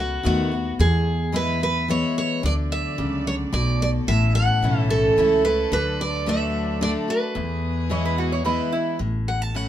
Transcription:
0.00 0.16 C#2 medium
0.00 0.19 B2 medium
0.00 0.24 B3 medium
0.00 0.24 F#4 medium
0.00 0.25 F#4 medium
0.23 0.71 D#2 loud
0.23 0.50 D#3 medium
0.23 0.51 A3 medium
0.23 0.51 B3 medium
0.23 0.50 F#4 loud
0.23 0.76 F#4 medium
0.52 0.79 B3 soft
0.52 0.78 F#4 medium
0.79 2.02 E2 loud
0.79 1.83 E2 medium
0.79 1.36 G#4 loud
1.32 1.59 E3 medium
1.32 1.60 G#3 medium
1.32 1.60 B3 medium
1.32 1.60 E4 medium
1.32 1.62 B4 loud
1.61 1.88 B3 soft
1.61 1.87 E4 medium
1.61 1.90 B4 medium
1.88 2.41 E3 medium
1.88 2.41 G#3 medium
1.88 2.41 B3 loud
1.88 2.41 E4 medium
1.88 2.17 C#5 medium
2.18 2.45 C#5 medium
2.43 2.84 D2 medium
2.43 3.47 D3 medium
2.43 4.06 F#3 medium
2.43 7.32 A3 medium
2.43 7.32 A4 loud
2.43 4.06 D5 medium
2.43 2.53 D5 loud
2.72 3.27 E5 medium
2.98 3.45 C#2 medium
2.98 3.50 C#3 medium
3.27 3.34 C#5 medium
3.53 3.99 B1 loud
3.53 4.05 B2 medium
3.53 3.81 D5 medium
3.82 3.89 D5 medium
4.07 4.48 A1 medium
4.07 5.12 A2 loud
4.07 5.71 E3 medium
4.07 5.71 C#4 medium
4.07 4.35 E5 loud
4.35 4.79 F#5 loud
4.62 5.08 B1 medium
4.62 5.14 E3 medium
4.62 5.15 A3 medium
4.62 5.15 C#4 medium
4.62 5.15 E4 loud
4.79 4.91 E5 loud
4.90 5.44 A4 medium
5.17 5.63 C#2 medium
5.17 5.43 E3 medium
5.17 5.44 A3 medium
5.17 5.44 C#4 loud
5.17 5.44 E4 loud
5.45 5.72 C#4 medium
5.45 5.71 E4 medium
5.45 5.72 B4 medium
5.71 6.94 D2 medium
5.71 6.25 D3 loud
5.71 7.35 F#3 medium
5.71 7.34 D4 medium
5.71 6.00 B4 loud
6.01 6.28 D5 medium
6.26 6.78 D3 medium
6.26 6.79 A3 loud
6.26 6.79 D4 loud
6.26 6.79 F#4 loud
6.26 6.79 E5 medium
6.81 7.07 D3 medium
6.81 7.07 A3 medium
6.81 7.08 D4 loud
6.81 7.07 F#4 loud
6.81 6.90 D5 medium
7.08 7.35 D4 soft
7.08 7.34 F#4 medium
7.08 8.69 B4 medium
7.35 8.39 E2 medium
7.35 8.59 E2 loud
7.35 8.99 E3 medium
7.35 8.99 G#3 medium
7.35 8.99 B3 medium
7.35 8.99 G#4 medium
7.90 8.42 E3 medium
7.90 8.42 G#3 loud
7.90 8.43 B3 loud
7.90 8.43 E4 loud
7.90 8.04 C#5 medium
8.05 8.18 B4 medium
8.18 8.31 F#4 medium
8.32 8.45 C#5 medium
8.44 8.97 E3 medium
8.44 8.97 G#3 medium
8.44 8.97 B3 medium
8.44 8.98 E4 loud
8.44 8.72 B4 medium
8.72 8.99 E4 medium
8.99 9.69 A1 medium
8.99 9.69 A2 medium
9.28 9.42 F#5 medium
9.42 9.56 A5 medium
9.54 9.69 E3 medium
9.54 9.69 A3 medium
9.54 9.69 C#4 medium
9.54 9.69 E4 medium
9.54 9.69 F#5 medium

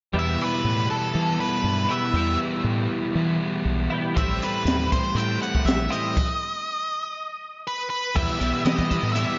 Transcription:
0.13 1.14 E2 medium
0.13 0.35 E2 medium
0.13 1.14 B2 medium
0.13 1.14 E3 medium
0.13 1.15 G3 medium
0.13 1.16 B3 medium
0.13 1.16 E4 medium
0.19 0.43 E5 medium
0.42 0.90 B4 medium
0.64 0.86 A2 medium
0.90 1.40 A4 medium
1.14 2.13 E2 medium
1.14 2.13 B2 medium
1.14 2.14 E3 medium
1.14 1.36 E3 medium
1.14 2.15 G3 medium
1.14 2.15 B3 medium
1.14 2.16 E4 medium
1.40 1.92 B4 medium
1.64 1.86 G2 medium
1.89 2.14 G3 medium
1.89 2.14 B3 medium
1.89 2.16 E4 medium
1.89 2.38 E5 medium
2.13 2.36 E2 medium
2.13 3.13 E2 medium
2.13 3.13 B2 medium
2.13 3.15 E3 medium
2.13 3.15 G3 medium
2.13 3.15 B3 medium
2.13 3.16 E4 medium
2.64 2.86 A2 medium
3.14 4.14 E2 medium
3.14 4.14 B2 medium
3.14 3.37 E3 medium
3.14 4.14 E3 medium
3.14 4.15 G3 medium
3.14 4.15 B3 medium
3.14 4.15 E4 medium
3.65 3.87 B1 medium
3.90 4.13 G3 medium
3.90 4.15 B3 medium
3.90 4.15 E4 medium
4.14 4.38 A1 medium
4.14 5.14 A2 medium
4.14 5.15 E3 medium
4.14 5.89 G3 medium
4.14 5.15 A3 medium
4.14 5.15 C4 medium
4.14 5.15 E4 medium
4.14 4.43 E5 medium
4.14 kick loud
4.14 closed hi-hat medium
4.42 4.90 B4 medium
4.42 closed hi-hat medium
4.65 4.87 D#2 medium
4.65 snare medium
4.65 closed hi-hat medium
4.92 5.18 C5 medium
4.92 kick medium
4.92 closed hi-hat medium
5.15 5.37 A2 medium
5.15 6.15 A2 medium
5.15 6.15 E3 medium
5.15 6.15 A3 medium
5.15 6.15 C4 medium
5.15 6.16 E4 medium
5.15 5.41 G5 medium
5.15 closed hi-hat medium
5.42 5.65 F#5 medium
5.42 closed hi-hat medium
5.55 kick medium
5.65 5.87 A#1 medium
5.65 5.90 E5 medium
5.65 closed hi-hat medium
5.69 snare loud
5.90 6.16 G3 medium
5.90 6.15 C4 medium
5.90 6.15 E4 medium
5.90 7.62 D#5 medium
5.90 closed hi-hat medium
6.17 kick medium
6.17 crash medium
7.67 7.89 B4 medium
7.90 8.16 B4 medium
8.15 8.38 E2 medium
8.15 8.27 E2 medium
8.15 8.38 B2 medium
8.15 8.39 E3 medium
8.15 8.39 G3 medium
8.15 8.39 B3 medium
8.15 8.40 E4 loud
8.15 8.64 E5 medium
8.15 kick loud
8.15 crash medium
8.38 8.51 B1 medium
8.38 8.64 E2 medium
8.38 8.63 B2 medium
8.38 8.65 E3 medium
8.38 8.65 G3 medium
8.38 8.65 B3 medium
8.38 8.65 E4 medium
8.38 closed hi-hat medium
8.64 8.90 E2 medium
8.64 8.89 B2 medium
8.64 8.90 E3 medium
8.64 8.96 E3 medium
8.64 8.90 G3 medium
8.64 8.91 B3 medium
8.64 8.91 E4 medium
8.64 9.11 D#5 medium
8.64 snare loud
8.64 closed hi-hat medium
8.79 kick medium
8.90 9.13 E2 medium
8.90 9.14 B2 medium
8.90 9.14 E3 loud
8.90 9.15 G3 medium
8.90 9.15 B3 medium
8.90 9.16 E4 medium
8.90 kick medium
8.90 closed hi-hat medium
9.03 9.23 A2 medium
9.12 9.39 E2 medium
9.12 9.39 B2 medium
9.12 9.39 E3 medium
9.12 9.39 G3 medium
9.12 9.39 B3 medium
9.12 9.39 E5 medium
9.12 closed hi-hat medium
9.17 9.39 E4 medium

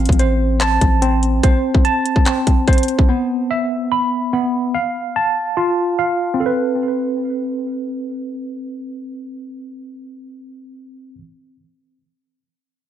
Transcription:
0.00 1.01 C4 medium
0.05 0.78 A1 loud
0.05 kick medium
0.05 closed hi-hat medium
0.12 closed hi-hat medium
0.19 1.42 C5 medium
0.19 closed hi-hat medium
0.61 1.84 A5 medium
0.61 cross-stick medium
0.61 clap loud
0.61 closed hi-hat medium
0.81 1.41 A1 loud
0.81 kick medium
0.81 closed hi-hat medium
1.02 2.25 C4 loud
1.02 closed hi-hat medium
1.23 closed hi-hat medium
1.43 2.67 C5 medium
1.43 kick loud
1.43 closed hi-hat medium
1.74 kick medium
1.85 3.09 A5 medium
1.85 closed hi-hat medium
2.06 closed hi-hat medium
2.16 kick medium
2.26 3.09 C4 medium
2.26 clap loud
2.26 closed hi-hat medium
2.47 kick medium
2.47 closed hi-hat medium
2.68 3.09 C5 medium
2.68 kick loud
2.68 closed hi-hat soft
2.73 closed hi-hat medium
2.78 closed hi-hat medium
2.83 closed hi-hat medium
2.88 closed hi-hat medium
2.99 kick loud
3.09 4.32 B3 medium
3.51 4.75 E5 medium
3.92 4.74 B5 medium
4.33 4.74 B3 medium
4.74 5.97 F5 medium
5.16 6.40 A5 medium
5.57 6.40 F4 medium
5.99 6.40 F5 medium
6.34 11.14 C4 medium
6.40 11.17 A4 medium
6.46 11.20 B4 medium

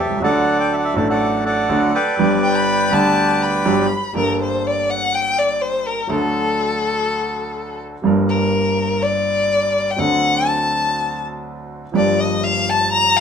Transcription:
0.00 0.19 G4 medium
0.00 0.20 A4 medium
0.00 0.22 E5 medium
0.05 0.11 B1 soft
0.11 0.17 C2 medium
0.17 0.23 C#2 medium
0.17 0.91 F#3 medium
0.22 0.92 D2 medium
0.22 0.92 D3 medium
0.22 0.92 A3 medium
0.22 0.92 D4 medium
0.22 1.08 A4 medium
0.22 0.93 A4 medium
0.22 0.95 D5 medium
0.22 0.58 F#5 medium
0.60 0.73 G5 medium
0.73 0.76 E5 medium
0.78 0.84 F#5 medium
0.85 0.96 E5 medium
0.94 1.66 A1 medium
0.94 1.66 A2 medium
0.94 1.65 F#3 medium
0.94 1.65 A3 medium
0.94 1.66 D4 medium
0.94 1.08 D5 medium
0.98 1.67 A4 medium
1.09 1.44 A4 medium
1.09 1.44 D5 medium
1.09 1.44 F#5 medium
1.46 2.15 A4 medium
1.46 1.93 D5 medium
1.46 1.96 F#5 medium
1.69 1.90 D2 medium
1.69 1.90 D3 medium
1.69 1.90 F#3 medium
1.69 1.90 A3 medium
1.69 1.90 D4 medium
1.69 1.90 A4 medium
1.94 3.86 B4 medium
1.94 3.86 D5 medium
1.94 3.87 G5 medium
2.17 2.88 G1 medium
2.17 2.88 G2 medium
2.17 2.87 G3 medium
2.17 2.88 B3 medium
2.17 2.89 D4 medium
2.21 2.90 G4 medium
2.44 2.57 G5 medium
2.56 2.94 B5 medium
2.90 3.62 D2 medium
2.90 3.62 D3 medium
2.90 3.61 G3 medium
2.90 3.61 B3 medium
2.90 3.62 D4 medium
2.90 3.44 A5 medium
2.94 3.63 G4 medium
3.42 4.15 B5 medium
3.65 3.86 G1 medium
3.65 3.86 G2 medium
3.65 3.86 F#3 medium
3.65 3.86 B3 medium
3.65 3.86 D4 medium
3.65 3.86 G4 medium
4.13 6.00 G1 medium
4.13 6.01 G2 medium
4.13 5.99 G3 medium
4.13 6.00 A#3 soft
4.13 6.01 D4 soft
4.13 6.01 A4 medium
4.13 4.39 A#4 medium
4.43 4.69 C5 medium
4.67 4.91 D5 medium
4.90 5.16 F#5 medium
5.15 5.40 G5 loud
5.38 5.63 D5 medium
5.62 5.88 C5 medium
5.86 6.12 A#4 medium
6.07 7.94 D2 medium
6.07 7.94 D3 medium
6.07 7.93 F#3 medium
6.07 7.94 A3 soft
6.07 7.95 D4 soft
6.07 7.80 A4 medium
6.11 7.95 A4 medium
8.02 9.89 G1 medium
8.02 9.89 G2 medium
8.02 9.88 G3 medium
8.02 9.88 A#3 medium
8.02 9.89 D4 soft
8.06 9.90 A#4 medium
8.30 9.04 A#4 medium
9.02 9.92 D5 medium
9.91 10.01 G5 medium
9.96 11.84 D2 medium
9.96 11.84 D3 medium
9.96 11.83 F#3 medium
9.96 11.84 C4 soft
9.96 11.85 D4 medium
9.96 11.85 A4 medium
9.96 10.48 F#5 medium
10.47 11.20 A5 medium
11.92 13.20 G1 medium
11.92 13.20 G2 medium
11.92 13.20 F3 medium
11.92 13.20 A#3 soft
11.92 13.20 D4 soft
11.92 13.20 G4 medium
11.96 12.22 D5 medium
12.20 12.46 D#5 medium
12.44 12.71 F5 medium
12.70 12.92 A5 medium
12.93 13.18 A#5 loud
13.17 13.20 F5 medium

